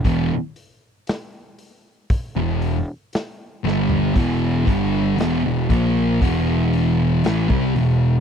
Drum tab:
HH |o-o-o-o-o-o-o---|o-o-o-o-o-o-o-o-|
SD |----o-------o-o-|----o-------o---|
FT |---------------o|----------------|
BD |o-------o-------|o-o---o-o----o--|